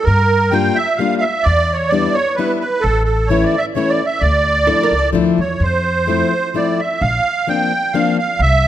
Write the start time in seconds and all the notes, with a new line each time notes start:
0.04 G2 A#4
0.51 G3 A#3 D4 F4 G5
0.75 E5
0.96 G3 A#3 D4 F5
1.01 F4
1.18 E5 F5
1.43 E2 D5
1.73 C#5
1.88 G3 B3 D5
1.93 D4 E4
2.14 C#5
2.35 G3 B3 D4 B4
2.39 E4
2.60 B4
2.81 A1 A4
3.04 A4
3.27 E3 A3 C#4 C#5
3.31 E4
3.44 D5
3.58 E5
3.75 E3 A3 C#4 E4 C#5
3.89 D5
4.06 E5
4.20 D2 D5
4.67 F3 A3 D4 E4 A4
4.83 A#4
4.91 C#2
4.98 A4
5.13 D2 F3 A3 D4 E4
5.38 E2 C#5
5.60 F2 C5
6.07 F3 A3 C4 E4
6.54 F3 A3 C4 E4 D5
6.80 E5
7.01 A#1 F5
7.47 F3 A#3 C4 D4 G5
7.93 F3 A#3 C4 D4 F5
8.19 F5
8.39 C2 E5